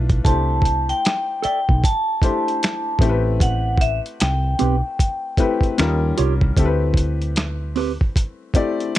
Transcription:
0.00 0.19 B1 medium
0.00 0.17 A3 medium
0.00 0.17 D4 medium
0.00 0.17 E4 medium
0.00 0.18 F4 medium
0.00 0.18 B4 medium
0.10 kick medium
0.10 closed hi-hat soft
0.24 0.91 C2 medium
0.24 1.67 A3 medium
0.24 1.68 D4 medium
0.24 1.68 E4 medium
0.24 1.68 G4 medium
0.24 1.69 C5 medium
0.24 0.91 A5 medium
0.24 kick loud
0.24 closed hi-hat medium
0.62 kick medium
0.62 closed hi-hat medium
0.89 1.40 G5 medium
0.89 closed hi-hat soft
1.05 finger snap medium
1.05 snare loud
1.05 closed hi-hat medium
1.42 1.58 A4 medium
1.42 1.59 D5 medium
1.42 1.60 E5 medium
1.42 1.84 G5 medium
1.42 muted fretless electric bass stroke soft
1.42 closed hi-hat medium
1.69 1.81 B1 medium
1.69 kick medium
1.84 2.98 A5 medium
1.84 kick medium
1.84 closed hi-hat medium
2.22 2.99 A3 medium
2.22 3.01 D4 medium
2.22 3.00 E4 medium
2.22 3.01 G4 medium
2.22 3.02 C5 medium
2.22 kick medium
2.22 closed hi-hat medium
2.48 closed hi-hat soft
2.63 finger snap medium
2.63 snare medium
2.63 closed hi-hat medium
2.99 3.99 A1 medium
2.99 4.44 A3 medium
2.99 4.44 C4 medium
2.99 4.44 E4 medium
2.99 4.45 G4 medium
2.99 3.10 A4 medium
2.99 kick medium
2.99 closed hi-hat medium
3.09 4.48 B4 medium
3.40 3.82 F#5 medium
3.40 kick loud
3.40 closed hi-hat medium
3.77 3.99 E5 medium
3.77 kick medium
3.77 closed hi-hat medium
4.06 closed hi-hat soft
4.20 4.54 C2 medium
4.20 6.13 G5 medium
4.20 finger snap medium
4.20 snare loud
4.20 closed hi-hat medium
4.59 4.81 B1 medium
4.59 4.75 C4 medium
4.59 4.75 G4 medium
4.59 4.76 B4 medium
4.59 closed hi-hat medium
4.99 kick medium
4.99 closed hi-hat medium
5.37 5.77 A3 medium
5.37 5.78 C4 medium
5.37 5.78 E4 medium
5.37 5.78 G4 medium
5.37 5.78 B4 medium
5.37 kick medium
5.37 closed hi-hat medium
5.61 kick medium
5.61 closed hi-hat soft
5.78 6.11 D#2 medium
5.78 6.49 G3 medium
5.78 6.49 C#4 medium
5.78 6.50 D#4 medium
5.78 6.50 F4 medium
5.78 6.50 A#4 medium
5.78 finger snap medium
5.78 snare medium
5.78 closed hi-hat medium
6.18 6.51 C2 medium
6.18 6.33 F4 medium
6.18 6.33 G4 medium
6.18 6.33 C#5 medium
6.18 closed hi-hat medium
6.41 kick medium
6.57 7.96 D2 medium
6.57 8.00 A3 medium
6.57 8.00 C4 medium
6.57 8.00 E4 medium
6.57 8.00 G4 medium
6.57 6.66 A4 medium
6.57 kick loud
6.57 closed hi-hat medium
6.65 8.04 B4 medium
6.94 kick medium
6.94 closed hi-hat medium
7.22 closed hi-hat soft
7.36 finger snap medium
7.36 snare loud
7.36 closed hi-hat medium
7.76 7.91 C4 medium
7.76 7.91 G4 medium
7.76 7.92 B4 medium
7.76 open hi-hat soft
8.01 kick medium
8.16 kick medium
8.16 closed hi-hat medium
8.54 8.99 A3 medium
8.54 8.99 C4 medium
8.54 8.99 E4 medium
8.54 8.99 G4 medium
8.54 8.99 D5 medium
8.54 kick medium
8.54 closed hi-hat medium
8.80 closed hi-hat soft
8.95 closed hi-hat medium

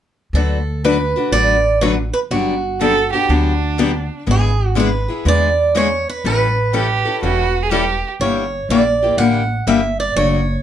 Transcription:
0.33 1.12 D2 medium
0.33 0.57 D3 medium
0.33 0.57 F#3 medium
0.33 0.57 A3 medium
0.33 0.57 D4 soft
0.33 0.57 F#4 medium
0.33 0.84 A4 medium
0.33 0.58 B4 medium
0.84 0.96 D3 medium
0.84 0.96 F#3 medium
0.84 0.96 A3 medium
0.84 0.96 D4 medium
0.84 0.96 F#4 medium
0.84 1.30 B4 medium
0.84 0.96 B4 medium
1.16 1.32 A3 soft
1.16 1.32 D4 soft
1.16 1.32 F#4 soft
1.16 1.32 B4 medium
1.32 2.11 A1 medium
1.32 1.55 D3 medium
1.32 1.55 F#3 medium
1.32 1.55 A3 medium
1.32 1.55 D4 medium
1.32 1.55 F#4 medium
1.32 1.56 B4 medium
1.32 1.81 D5 loud
1.81 1.93 D3 medium
1.81 1.94 F#3 medium
1.81 1.94 A3 medium
1.81 1.94 D4 medium
1.81 1.94 F#4 medium
1.81 1.94 B4 medium
1.81 1.90 C#5 medium
2.13 2.18 B4 medium
2.31 3.10 G1 medium
2.31 2.53 D3 medium
2.31 2.54 F#3 medium
2.31 2.53 B3 medium
2.31 2.54 D4 medium
2.31 4.07 F#4 medium
2.31 2.54 G4 medium
2.81 2.92 D3 medium
2.81 2.92 F#3 medium
2.81 2.93 B3 medium
2.81 2.93 D4 medium
2.81 2.93 G4 medium
2.81 3.11 A4 medium
3.12 3.29 B3 soft
3.12 3.29 D4 soft
3.12 3.32 G4 medium
3.12 3.29 G4 medium
3.29 4.08 D2 medium
3.29 3.52 D3 medium
3.29 3.52 F#3 medium
3.29 3.52 B3 medium
3.29 3.52 D4 medium
3.29 4.20 D4 medium
3.29 3.52 G4 medium
3.78 3.90 D3 medium
3.78 3.91 F#3 loud
3.78 3.91 B3 medium
3.78 3.91 D4 medium
3.78 3.91 G4 medium
4.26 5.06 G#1 medium
4.26 4.49 D3 soft
4.26 4.50 G#3 medium
4.26 4.50 B3 medium
4.26 4.50 E4 medium
4.26 4.50 G#4 medium
4.31 4.75 G#4 medium
4.75 4.88 D3 medium
4.75 4.88 G#3 medium
4.75 4.88 B3 medium
4.75 4.89 E4 medium
4.75 4.89 G#4 medium
4.80 5.24 B4 medium
5.08 5.25 B3 soft
5.08 5.25 E4 soft
5.08 5.25 G#4 soft
5.25 6.04 E2 medium
5.25 5.48 D3 medium
5.25 5.48 G#3 medium
5.25 5.48 B3 medium
5.25 5.48 E4 medium
5.25 5.48 G#4 medium
5.25 5.73 D5 loud
5.75 5.87 D3 medium
5.75 5.87 G#3 medium
5.75 5.87 B3 medium
5.75 5.87 E4 medium
5.75 5.87 G#4 medium
5.75 6.09 C#5 medium
6.09 6.25 B4 medium
6.24 7.03 A1 medium
6.24 6.47 E3 medium
6.24 6.47 G3 soft
6.24 6.47 C#4 medium
6.24 6.47 E4 medium
6.24 6.47 A4 medium
6.24 8.01 B4 medium
6.73 6.85 E3 medium
6.73 6.85 G3 medium
6.73 6.85 C#4 medium
6.73 6.85 E4 medium
6.73 7.19 G4 medium
6.73 6.86 A4 medium
7.05 7.22 C#4 soft
7.05 7.22 E4 soft
7.05 7.22 A4 soft
7.23 8.01 E1 medium
7.23 7.45 E3 medium
7.23 7.45 G3 medium
7.23 7.45 C#4 medium
7.23 7.45 E4 medium
7.23 7.64 F#4 medium
7.23 7.45 A4 medium
7.63 7.71 G#4 loud
7.71 7.83 E3 medium
7.71 7.83 G3 medium
7.71 7.83 C#4 medium
7.71 7.84 E4 medium
7.71 8.09 G4 medium
7.71 7.84 A4 medium
8.20 8.59 G1 medium
8.20 8.43 D3 medium
8.20 8.43 G3 medium
8.20 8.43 A#3 medium
8.20 8.43 E4 medium
8.20 8.43 G4 medium
8.20 8.70 C#5 medium
8.69 9.11 A#1 medium
8.69 8.82 D3 medium
8.69 8.82 G3 medium
8.69 8.82 A#3 medium
8.69 8.82 E4 medium
8.69 8.82 G4 medium
8.69 9.16 D5 medium
9.02 9.18 A#3 soft
9.02 9.18 E4 soft
9.02 9.18 G4 soft
9.17 9.60 A1 medium
9.17 9.41 D3 medium
9.17 9.41 G3 medium
9.17 9.41 A#3 medium
9.17 9.41 E4 medium
9.17 9.41 G4 medium
9.17 9.67 F#5 loud
9.67 10.09 G1 medium
9.67 9.79 D3 medium
9.67 9.79 G3 medium
9.67 9.79 A#3 medium
9.67 9.80 E4 medium
9.67 9.80 G4 medium
9.67 9.97 E5 medium
10.00 10.16 D5 medium
10.16 10.55 F#1 medium
10.16 10.39 C#3 medium
10.16 10.39 F#3 medium
10.16 10.39 A3 medium
10.16 10.39 D4 medium
10.16 10.39 F#4 medium
10.16 10.62 C#5 loud

